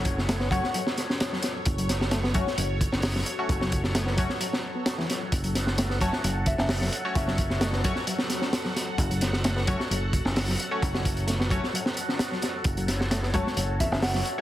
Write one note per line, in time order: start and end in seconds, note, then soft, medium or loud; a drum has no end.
0.00 0.59 F#1 loud
0.00 14.41 F#3 medium
0.00 0.49 A3 medium
0.00 0.49 C#4 medium
0.00 0.49 F#4 medium
0.00 14.41 F#4 medium
0.00 14.41 A4 medium
0.00 0.49 C#5 medium
0.00 5.31 C#5 medium
0.00 downlifter medium
0.05 kick loud
0.05 closed hi-hat medium
0.18 snare soft
0.29 0.36 A3 loud
0.29 snare loud
0.29 closed hi-hat medium
0.40 0.47 B3 loud
0.40 snare soft
0.51 0.59 F#3 loud
0.51 0.63 A3 loud
0.51 0.63 C#4 medium
0.51 0.63 F#4 medium
0.51 0.63 C#5 loud
0.51 0.59 F#5 medium
0.51 kick loud
0.51 closed hi-hat medium
0.63 0.70 F#5 medium
0.63 snare soft
0.74 0.79 F#3 medium
0.74 closed hi-hat medium
0.87 snare medium
0.98 snare soft
0.98 closed hi-hat medium
1.09 1.16 C#4 medium
1.09 snare soft
1.20 snare loud
1.20 closed hi-hat medium
1.32 1.36 F#3 medium
1.32 snare soft
1.43 snare medium
1.43 closed hi-hat medium
1.66 2.42 F#1 loud
1.66 kick loud
1.66 closed hi-hat medium
1.78 1.88 F#3 medium
1.78 closed hi-hat soft
1.89 snare soft
1.89 closed hi-hat medium
2.01 snare medium
2.11 2.20 A3 loud
2.11 snare loud
2.11 closed hi-hat medium
2.24 2.31 B3 loud
2.24 snare medium
2.34 2.42 F#3 loud
2.34 2.46 A3 medium
2.34 2.46 C#4 medium
2.34 2.46 F#4 medium
2.34 2.46 C#5 loud
2.34 kick loud
2.34 closed hi-hat medium
2.47 snare soft
2.57 2.88 F#1 medium
2.57 2.62 F#3 medium
2.57 closed hi-hat medium
2.81 kick medium
2.81 closed hi-hat medium
2.92 3.22 F#1 medium
2.92 2.99 C#4 medium
2.92 snare medium
3.02 snare loud
3.02 open hi-hat medium
3.15 3.19 F#3 medium
3.15 snare medium
3.26 closed hi-hat medium
3.39 4.16 A3 medium
3.39 4.16 C#4 medium
3.39 4.16 F#4 medium
3.39 4.16 C#5 medium
3.49 4.25 F#1 loud
3.49 kick loud
3.49 closed hi-hat medium
3.61 3.71 F#3 medium
3.61 snare medium
3.72 kick loud
3.72 closed hi-hat medium
3.84 snare soft
3.95 4.02 A3 loud
3.95 snare loud
3.95 closed hi-hat medium
4.06 4.14 B3 loud
4.06 snare medium
4.17 4.25 F#3 loud
4.17 4.30 A3 medium
4.17 4.30 C#4 medium
4.17 4.30 F#4 medium
4.17 4.30 C#5 loud
4.17 kick loud
4.17 closed hi-hat medium
4.29 snare soft
4.40 4.45 F#3 medium
4.40 closed hi-hat medium
4.53 snare medium
4.75 4.82 B3 medium
4.86 4.97 F#4 medium
4.86 snare loud
4.86 closed hi-hat medium
4.98 5.05 E3 loud
4.98 snare soft
5.10 snare soft
5.10 closed hi-hat medium
5.32 6.08 F#1 loud
5.32 12.64 F#5 medium
5.32 kick loud
5.32 closed hi-hat loud
5.44 5.55 F#3 medium
5.44 closed hi-hat soft
5.55 snare soft
5.55 closed hi-hat medium
5.67 snare medium
5.78 5.86 A3 loud
5.78 snare loud
5.78 closed hi-hat loud
5.90 5.97 B3 loud
5.90 snare medium
6.01 6.09 F#3 loud
6.01 6.13 A3 medium
6.01 6.13 C#4 medium
6.01 6.13 F#4 medium
6.01 6.13 C#5 loud
6.01 6.21 A5 medium
6.01 kick loud
6.01 closed hi-hat medium
6.13 snare soft
6.24 6.54 F#1 medium
6.24 6.29 F#3 medium
6.24 closed hi-hat medium
6.46 6.55 E5 medium
6.46 kick medium
6.46 closed hi-hat medium
6.58 6.88 F#1 medium
6.58 6.66 C#4 medium
6.58 6.66 E5 medium
6.58 snare medium
6.69 snare loud
6.69 open hi-hat medium
6.81 6.86 F#3 medium
6.81 snare medium
6.93 closed hi-hat medium
7.05 7.82 A3 medium
7.05 7.82 C#4 medium
7.05 7.82 F#4 medium
7.05 7.82 C#5 medium
7.15 7.91 F#1 loud
7.15 7.80 E5 medium
7.15 kick loud
7.15 closed hi-hat medium
7.27 7.38 F#3 medium
7.27 snare medium
7.38 kick loud
7.38 closed hi-hat medium
7.50 snare soft
7.61 7.69 A3 loud
7.61 snare loud
7.61 closed hi-hat medium
7.73 7.80 B3 loud
7.73 snare medium
7.84 7.92 F#3 loud
7.84 7.96 A3 medium
7.84 7.96 C#4 medium
7.84 7.96 F#4 medium
7.84 7.96 C#5 loud
7.84 kick medium
7.84 closed hi-hat medium
7.96 snare soft
8.07 8.12 F#3 medium
8.07 closed hi-hat medium
8.18 snare medium
8.30 snare soft
8.30 closed hi-hat medium
8.42 8.49 C#4 medium
8.42 snare medium
8.53 snare loud
8.53 closed hi-hat medium
8.65 8.69 F#3 medium
8.65 snare soft
8.76 snare soft
8.76 closed hi-hat medium
8.98 9.75 F#1 loud
8.98 kick loud
8.98 closed hi-hat medium
9.11 9.21 F#3 medium
9.11 closed hi-hat soft
9.21 snare medium
9.21 closed hi-hat medium
9.33 snare medium
9.44 9.52 A3 loud
9.44 snare loud
9.44 closed hi-hat medium
9.56 9.63 B3 loud
9.56 snare medium
9.67 9.75 F#3 loud
9.67 9.79 A3 medium
9.67 9.79 C#4 medium
9.67 9.79 F#4 medium
9.67 9.79 C#5 loud
9.67 kick loud
9.67 closed hi-hat medium
9.80 snare soft
9.90 10.21 F#1 medium
9.90 9.95 F#3 medium
9.90 closed hi-hat medium
10.13 kick medium
10.13 closed hi-hat medium
10.25 10.55 F#1 medium
10.25 10.32 C#4 medium
10.25 snare medium
10.36 snare loud
10.36 open hi-hat medium
10.48 10.53 F#3 medium
10.48 snare soft
10.60 closed hi-hat medium
10.71 11.48 A3 medium
10.71 11.48 C#4 medium
10.71 11.48 F#4 medium
10.71 11.48 C#5 medium
10.82 11.58 F#1 loud
10.82 kick loud
10.82 closed hi-hat medium
10.94 11.05 F#3 medium
10.94 snare medium
11.05 kick loud
11.05 closed hi-hat medium
11.17 closed hi-hat soft
11.28 11.35 A3 loud
11.28 snare soft
11.28 closed hi-hat medium
11.39 11.47 B3 loud
11.39 snare soft
11.50 11.58 F#3 loud
11.50 11.62 A3 medium
11.50 11.62 C#4 medium
11.50 11.62 F#4 medium
11.50 11.62 C#5 loud
11.50 kick loud
11.50 closed hi-hat medium
11.64 snare soft
11.73 11.78 F#3 medium
11.73 closed hi-hat medium
11.86 snare medium
11.97 closed hi-hat medium
12.08 12.15 C#4 medium
12.08 snare soft
12.19 snare loud
12.19 closed hi-hat medium
12.31 12.36 F#3 medium
12.31 snare soft
12.42 snare medium
12.42 closed hi-hat medium
12.64 13.41 F#1 loud
12.64 14.41 C#5 medium
12.64 kick loud
12.64 closed hi-hat medium
12.77 12.88 F#3 medium
12.77 closed hi-hat soft
12.88 snare soft
12.88 closed hi-hat medium
13.01 snare medium
13.11 13.18 A3 loud
13.11 snare loud
13.11 closed hi-hat medium
13.23 13.30 B3 loud
13.23 snare medium
13.34 13.42 F#3 loud
13.34 13.46 A3 medium
13.34 13.46 C#4 medium
13.34 13.46 F#4 medium
13.34 13.46 C#5 loud
13.34 13.54 A5 medium
13.34 kick loud
13.34 closed hi-hat medium
13.34 high conga loud
13.47 snare soft
13.57 13.87 F#1 medium
13.57 13.61 F#3 medium
13.57 closed hi-hat medium
13.80 13.88 E5 medium
13.80 kick loud
13.80 closed hi-hat medium
13.80 low conga loud
13.92 14.21 F#1 medium
13.92 13.99 C#4 medium
13.92 13.99 E5 medium
13.92 snare medium
14.02 14.22 F#5 medium
14.02 snare loud
14.02 open hi-hat medium
14.14 14.19 F#3 medium
14.14 snare medium
14.25 closed hi-hat medium